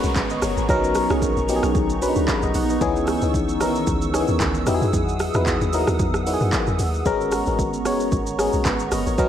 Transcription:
Already playing: G#3 B3 C#4 F#4 A#4 B4 F#5 A#5 C#6, downlifter
0.03 B1, shaker
0.16 G#1 G#4 B4, kick, clap, shaker
0.30 B4 D#5, shaker
0.42 F#1 A#4 C#5, cross-stick, open hi-hat, shaker
0.57 G#1 G#4 B4, shaker
0.68 B1 F#3 B3 C#4 D#4 A#4, kick, shaker
0.84 shaker
0.95 cross-stick, open hi-hat, shaker
1.09 B1 F#3 B3 C#4 D#4 G#4, cross-stick, shaker
1.22 kick, shaker
1.36 A#1, shaker
1.49 F#3 B3 C#4 D#4 G4, open hi-hat, shaker
1.56 G#4
1.63 A#1, cross-stick, shaker
1.75 B1, kick, shaker
1.90 shaker
2.02 F#3 B3 C#4 D4 B4 B5, open hi-hat, shaker
2.09 D#4
2.16 C#2, shaker
2.28 A#5, kick, clap, shaker
2.42 B1 B4 D#5, shaker
2.54 A#1 D#5 F#5, open hi-hat, shaker
2.70 B4 D#5, shaker
2.81 C#2 E3 B3 C#4 D#4 G#4 C#6 E6, kick, shaker
2.96 shaker
3.07 cross-stick, open hi-hat, shaker
3.22 C#2 E3 B3 C#4 D#4 G#4, shaker
3.34 kick, shaker
3.49 shaker
3.61 B1 D#3 B3 C#4 D#4 A#4, cross-stick, open hi-hat, shaker
3.67 E3
3.75 shaker
3.87 C#2, kick, shaker
4.02 shaker
4.14 D#3 B3 C#4 D#4 G#4, cross-stick, open hi-hat, shaker
4.20 E3
4.28 D#2, shaker
4.40 C#2, kick, clap, shaker
4.54 shaker
4.67 E2 F#3 B3 D#4 E4 G4 G#4 F#5 D#6, cross-stick, open hi-hat, shaker
4.74 G#4
4.81 F#2, shaker
4.93 E2, kick, shaker
5.09 shaker
5.19 cross-stick, open hi-hat, shaker
5.34 E2 F#3 B3 D#4 E4 B4, cross-stick, shaker
5.46 kick, clap, shaker
5.61 D#2, shaker
5.73 F#3 B3 D#4 E4 A#4, open hi-hat, shaker
5.87 D#2, cross-stick, shaker
5.99 E2, kick, shaker
6.14 cross-stick, shaker
6.26 F#3 B3 D#4 E4 F#4, open hi-hat, shaker
6.34 G#4
6.40 F#2, shaker
6.53 kick, clap, shaker
6.67 E2, shaker
6.79 D#2, open hi-hat, shaker
6.94 shaker
7.06 G#1 G#3 B3 C#4 F#4 A#4 A#5 C#6, kick, shaker
7.21 shaker
7.32 cross-stick, open hi-hat, shaker
7.46 G#1 G#3 B3 C#4 F#4 A#4, shaker
7.59 kick, shaker
7.74 shaker
7.85 F#1 G#3 B3 C#4 F#4 C#5, cross-stick, open hi-hat, shaker
8.00 shaker
8.12 G#1, kick, shaker
8.27 shaker
8.39 G#3 B3 C#4 F#4 G#4, cross-stick, open hi-hat, shaker
8.53 B1, shaker
8.65 G#1 G#4 B4, kick, clap, shaker
8.79 shaker
8.92 F#1 B4 D#5, cross-stick, open hi-hat, shaker
9.06 G#1 A#4 C#5, shaker
9.18 B1 F#3 B3 C#4 D#4 A#4, kick, shaker

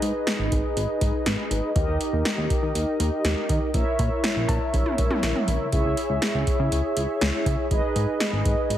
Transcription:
Already playing: D#4 G#4 B4 D#5
0.02 G#2, closed hi-hat
0.27 snare, closed hi-hat
0.39 G#1
0.52 G#1, kick, closed hi-hat
0.76 G#1, closed hi-hat
1.01 G#1, kick, closed hi-hat
1.26 G#1, snare, closed hi-hat
1.51 G#1, closed hi-hat
1.76 D#2 D#4 G4 A#4 D#5, kick, closed hi-hat
1.88 D#2
2.01 closed hi-hat
2.13 D#2
2.25 snare, closed hi-hat
2.38 D#2
2.50 kick, closed hi-hat
2.63 D#3
2.75 D#2, closed hi-hat
3.00 D#2, closed hi-hat
3.25 D#2, snare, closed hi-hat
3.49 D#3, kick, closed hi-hat
3.74 A#1 E4 A#4 C#5 E5, kick, closed hi-hat
3.99 A#2, kick, closed hi-hat
4.24 snare, closed hi-hat
4.36 A#1
4.49 A#1, kick, closed hi-hat, cowbell
4.73 A#1, kick, closed hi-hat
4.86 mid tom
4.98 A#1, kick, closed hi-hat
5.11 mid tom
5.23 A#1, snare, closed hi-hat
5.35 mid tom
5.48 A#1, closed hi-hat
5.72 C#2 E4 G#4 C#5 E5, kick, closed hi-hat
5.85 C#2
5.97 closed hi-hat
6.10 C#2
6.22 snare, closed hi-hat
6.35 C#2
6.47 kick, closed hi-hat
6.59 C#3
6.72 C#2, closed hi-hat
6.97 C#2, closed hi-hat
7.21 C#2, snare, closed hi-hat
7.46 C#3, kick, closed hi-hat
7.71 G#1 D#4 G#4 B4 D#5, kick, closed hi-hat
7.96 G#2, closed hi-hat
8.20 snare, closed hi-hat
8.33 G#1
8.45 G#1, kick, closed hi-hat
8.70 G#1, closed hi-hat

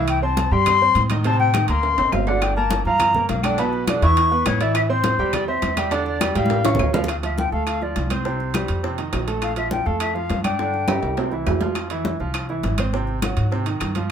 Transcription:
Already playing: C2 E3 E4 E5
0.08 G5, high conga, high timbale, claves
0.22 C4 C5 A5 C6, high conga
0.37 high conga, high timbale
0.51 G2 G3 G4 G5 C6, high conga
0.66 high conga, low conga, high timbale, claves
0.82 C4 C5 C6, high conga
0.95 A2, high conga, high timbale
1.10 D#3 D#4 D#5, high conga, high timbale, claves
1.24 C3 C4 C5 A5, high conga, high timbale
1.39 G5, high conga
1.54 D#3 D#4 D#5, high conga, high timbale, claves
1.68 D2 A#3 A#4 A#5 C6, high conga, high timbale
1.83 high conga, high timbale
1.98 G#1 C4 C5 C6, high conga, high timbale
2.12 G1 F5, high conga, low timbale, claves
2.27 D3 D4 D5 F#5, low timbale
2.42 G5, high bongo, high conga, high timbale, claves
2.56 A#3 A#4 A5 A#5, high conga
2.71 high bongo, high conga, high timbale
2.85 G2 F3 F4 F5 A#5, high conga
2.99 high bongo, high conga, low conga, high timbale, claves
3.15 A#3 A#4 A#5, high conga, low conga
3.29 B1 F5, high bongo, low bongo, high conga, high timbale
3.43 D3 D4 D5 G5, high conga, high timbale, claves
3.58 B2 B3 B4 A5, high bongo, high conga, high timbale
3.73 high bongo, high conga
3.88 D3 D4 D5, high bongo, high conga, high timbale, claves
4.02 E2 E3 E4 E5 C#6, high bongo, high conga, high timbale
4.17 high bongo, high conga, high timbale
4.31 B3 B4 B5, high bongo, high conga
4.46 A1 C#5, high bongo, low bongo, high conga, high timbale, claves
4.61 E3 E4 D5 E5, high timbale
4.75 E5, high bongo, high conga, high timbale, claves
4.90 C4 C5 C6, high conga
5.04 high bongo, high conga, high timbale
5.19 E2 G3 G4 G5, high conga
5.33 D5, high bongo, high conga, low conga, high timbale, claves
5.48 C4 C5 E5 C6, high conga
5.62 E2, high bongo, low bongo, high conga, high timbale
5.77 G3 G4 G5, high conga, high timbale, claves
5.91 D3 D4 D5, high bongo, high conga, high timbale
6.06 D5, high bongo, high conga
6.21 G3 G4 G5, high bongo, high conga, high timbale, claves
6.35 A1 G3 G4 F5 G5, high bongo, high conga, high timbale
6.46 high conga
6.50 high bongo, high timbale
6.65 C#4 C#5 C#6, high bongo, low conga, high timbale
6.75 low conga
6.79 D2, low timbale, claves
6.93 F3 F4 F5, low bongo, low conga, low timbale
7.04 low conga
7.08 F5, high bongo, high conga, high timbale, claves
7.23 F3 F4 E5, high conga, high timbale
7.38 G5, high bongo, high conga
7.52 D2 A3 A4 F5, high bongo, high conga
7.67 F5, high bongo, high conga, high timbale, claves
7.81 F3 F4 D5, high bongo, high conga
7.96 C2, high bongo, low bongo, high conga, high timbale
8.10 C4 C5, high bongo, high conga, high timbale, claves
8.25 C3 C4, high bongo, high conga
8.40 high bongo, high conga
8.54 G3 G4, high bongo, high conga, high timbale, claves
8.68 F2, high conga, high timbale
8.83 C3 C4, high bongo, high conga
8.98 D#3 D#4, high bongo, high conga, high timbale
9.13 A#1, high bongo, low bongo, high conga, high timbale, low timbale, claves
9.27 A3 A4, high bongo, high timbale
9.42 F5, high bongo, high conga, high timbale, claves
9.56 F3 F4 E5, high conga, high timbale
9.71 G5, high bongo, high conga
9.86 F2 A3 A4 F5, high bongo, high conga
10.00 E5, high bongo, high conga, high timbale, claves
10.14 F3 F4 F5, high bongo, high conga
10.30 G2, high bongo, low bongo, high conga, high timbale
10.44 D4 D5 G5, high bongo, high conga, high timbale, claves
10.59 D3 D4, high bongo, high conga
10.74 high bongo, high conga
10.88 G3 G4, high bongo, high conga, high timbale, claves
11.03 C2, high conga, high timbale
11.17 C3 C4, high bongo, high conga, low timbale
11.32 E3 E4, high bongo, high conga
11.46 F2, high bongo, low bongo, high conga, low timbale, claves
11.61 F3 F4, high bongo, high conga, low timbale
11.75 high bongo, high conga, high timbale, claves
11.90 E3 E4, high conga, high timbale
12.05 high bongo, high conga
12.20 C2 F3 F4, high bongo, high conga
12.34 high bongo, high conga, high timbale, claves
12.49 E3 E4, high bongo, high conga
12.63 G#1, high bongo, low bongo, high conga, high timbale
12.78 C4 C5, high bongo, high conga, high timbale, claves
12.93 C3 C4, high bongo, high conga
13.07 high bongo, high conga
13.22 F#3 F#4, high bongo, high conga, high timbale, claves
13.37 G#2, high conga, high timbale
13.51 C3 C4, high bongo, high conga
13.66 D#3 D#4, high bongo, high conga, high timbale
13.80 G2, high bongo, low bongo, high conga, high timbale, claves
13.95 F3 F4, high bongo, high conga, high timbale

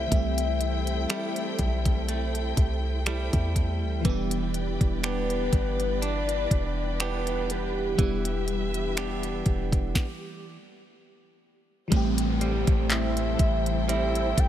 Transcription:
Already playing: C3 G3 A3 E4 C5 E5 G5
0.07 E3 G3 A4
0.12 C2 A3 C4, kick, closed hi-hat
0.16 G4
0.38 closed hi-hat
0.61 closed hi-hat
0.87 closed hi-hat
1.10 G3 A3 E4, finger snap, closed hi-hat
1.36 closed hi-hat
1.59 B1, kick, closed hi-hat
1.85 kick, closed hi-hat
2.08 A3, closed hi-hat
2.35 closed hi-hat
2.57 C2, kick, closed hi-hat
3.06 G3 A3 E4, finger snap, closed hi-hat
3.33 E2, kick, closed hi-hat
3.56 kick, closed hi-hat
3.83 D2
4.01 E1 E3 G3 E4 B4 D5, kick, closed hi-hat
4.05 E3 B3 D4
4.09 G4
4.31 closed hi-hat
4.54 closed hi-hat
4.81 E1, kick, closed hi-hat
5.03 B3 D4 G4 B4, finger snap, closed hi-hat
5.30 closed hi-hat
5.53 G1, kick, closed hi-hat
5.80 closed hi-hat
6.02 D4 D5, closed hi-hat
6.29 closed hi-hat
6.51 E1, kick, closed hi-hat
7.00 B3 D4 G4 B4, finger snap, closed hi-hat
7.27 closed hi-hat
7.50 G4, closed hi-hat
7.95 E1 E3 G3 E5
7.99 B3 D4, kick, closed hi-hat
8.03 E4
8.25 closed hi-hat
8.48 closed hi-hat
8.74 closed hi-hat
8.97 B3 D4 G4, finger snap, closed hi-hat
9.23 closed hi-hat
9.46 E1, kick, closed hi-hat
9.72 E1, kick, closed hi-hat
9.95 kick, snare
11.88 E3 G3 E4 A4 C5 G5, kick, closed hi-hat, downlifter
11.92 A1 A2 A3 C4
11.96 G4
12.18 closed hi-hat
12.41 G3 C5, closed hi-hat
12.67 A1, kick, closed hi-hat
12.90 C4 E5, clap, closed hi-hat
13.17 closed hi-hat
13.39 A1, kick, closed hi-hat
13.66 closed hi-hat
13.88 G3 C4 E4 E5, closed hi-hat
14.15 closed hi-hat
14.38 A1 A4 G5, kick, closed hi-hat

